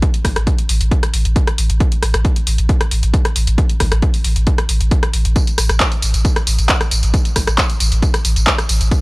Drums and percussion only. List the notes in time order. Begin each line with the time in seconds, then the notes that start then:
0.02 kick, closed hi-hat
0.14 closed hi-hat
0.25 kick, cross-stick, open hi-hat
0.36 cross-stick, closed hi-hat
0.47 kick, closed hi-hat
0.58 closed hi-hat
0.69 open hi-hat
0.81 closed hi-hat
0.91 kick, closed hi-hat
1.03 cross-stick, closed hi-hat
1.14 open hi-hat
1.25 closed hi-hat
1.36 kick, closed hi-hat
1.47 cross-stick, closed hi-hat
1.58 open hi-hat
1.70 closed hi-hat
1.80 kick, closed hi-hat
1.92 closed hi-hat
2.03 cross-stick, open hi-hat
2.14 cross-stick, closed hi-hat
2.25 kick, closed hi-hat
2.36 closed hi-hat
2.47 open hi-hat
2.58 closed hi-hat
2.69 kick, closed hi-hat
2.81 cross-stick, closed hi-hat
2.91 open hi-hat
3.03 closed hi-hat
3.14 kick, closed hi-hat
3.25 cross-stick, closed hi-hat
3.36 open hi-hat
3.47 closed hi-hat
3.58 kick, closed hi-hat
3.70 closed hi-hat
3.80 kick, cross-stick, open hi-hat
3.92 cross-stick, closed hi-hat
4.02 kick, closed hi-hat
4.14 open hi-hat
4.25 open hi-hat
4.36 closed hi-hat
4.47 kick, closed hi-hat
4.58 cross-stick, closed hi-hat
4.69 open hi-hat
4.81 closed hi-hat
4.91 kick, closed hi-hat
5.03 cross-stick, closed hi-hat
5.14 open hi-hat
5.25 closed hi-hat
5.36 kick, closed hi-hat, tambourine
5.47 closed hi-hat, tambourine
5.58 cross-stick, open hi-hat, tambourine
5.70 cross-stick, closed hi-hat, tambourine
5.80 kick, clap, closed hi-hat, tambourine
5.92 closed hi-hat, tambourine
6.02 open hi-hat, tambourine
6.14 closed hi-hat, tambourine
6.25 kick, closed hi-hat, tambourine
6.36 cross-stick, closed hi-hat, tambourine
6.47 open hi-hat, tambourine
6.58 closed hi-hat, tambourine
6.69 kick, clap, closed hi-hat, tambourine
6.81 cross-stick, closed hi-hat, tambourine
6.91 open hi-hat, tambourine
7.03 closed hi-hat, tambourine
7.14 kick, closed hi-hat, tambourine
7.25 closed hi-hat, tambourine
7.36 kick, cross-stick, open hi-hat, tambourine
7.47 cross-stick, closed hi-hat, tambourine
7.58 kick, clap, closed hi-hat, tambourine
7.70 closed hi-hat, tambourine
7.80 open hi-hat, tambourine
7.92 closed hi-hat, tambourine
8.03 kick, closed hi-hat, tambourine
8.14 cross-stick, closed hi-hat, tambourine
8.25 open hi-hat, tambourine
8.36 closed hi-hat, tambourine
8.47 kick, clap, closed hi-hat, tambourine
8.58 cross-stick, closed hi-hat, tambourine
8.69 open hi-hat, tambourine
8.81 closed hi-hat, tambourine
8.91 kick, closed hi-hat, tambourine